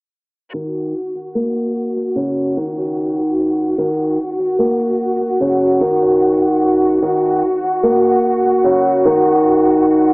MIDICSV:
0, 0, Header, 1, 3, 480
1, 0, Start_track
1, 0, Tempo, 810811
1, 322, Time_signature, 4, 2, 24, 8
1, 6000, End_track
2, 0, Start_track
2, 0, Title_t, "Violin section"
2, 0, Program_c, 0, 48
2, 316, Note_on_c, 0, 66, 72
2, 318, Note_off_c, 0, 66, 0
2, 318, Note_on_c, 0, 66, 71
2, 6000, Note_off_c, 0, 66, 0
2, 6000, End_track
3, 0, Start_track
3, 0, Title_t, "Nylon-string guitar"
3, 0, Program_c, 1, 24
3, 319, Note_on_c, 1, 51, 76
3, 551, Note_off_c, 1, 51, 0
3, 799, Note_on_c, 1, 58, 77
3, 1261, Note_off_c, 1, 58, 0
3, 1276, Note_on_c, 1, 49, 85
3, 1509, Note_off_c, 1, 49, 0
3, 1520, Note_on_c, 1, 51, 92
3, 2222, Note_off_c, 1, 51, 0
3, 2238, Note_on_c, 1, 51, 85
3, 2470, Note_off_c, 1, 51, 0
3, 2716, Note_on_c, 1, 58, 79
3, 3180, Note_off_c, 1, 58, 0
3, 3198, Note_on_c, 1, 49, 80
3, 3430, Note_off_c, 1, 49, 0
3, 3438, Note_on_c, 1, 51, 92
3, 4140, Note_off_c, 1, 51, 0
3, 4156, Note_on_c, 1, 51, 87
3, 4389, Note_off_c, 1, 51, 0
3, 4637, Note_on_c, 1, 58, 81
3, 5100, Note_off_c, 1, 58, 0
3, 5117, Note_on_c, 1, 49, 89
3, 5350, Note_off_c, 1, 49, 0
3, 5359, Note_on_c, 1, 51, 95
3, 6000, Note_off_c, 1, 51, 0
3, 6000, End_track
0, 0, End_of_file